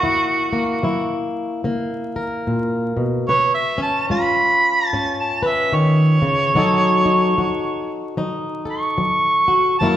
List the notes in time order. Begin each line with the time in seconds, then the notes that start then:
Already playing: A#3 F#4
0.03 F#2 E4
0.53 A#3
0.83 F#3 E4
1.64 C#3 A#3
2.16 A#4
2.47 A#2
2.97 B2
3.28 C#3 B4 C#5
3.54 E5
3.78 C#4
3.82 A5
4.10 G#3 F4 B5
4.87 A5
4.93 G#2 C#4
5.20 A5
5.42 B4
5.48 E5
5.72 D#3 C#5
6.22 C#3
6.54 B2 F#3 D#4 F#4 A4
7.06 D#4
7.38 F#3 F#4
8.17 F#3 D#4
8.65 A4
8.71 C#6
8.98 F#3
9.48 F#4
9.79 F#2 F#3 A#3 A5
9.83 E4 A#4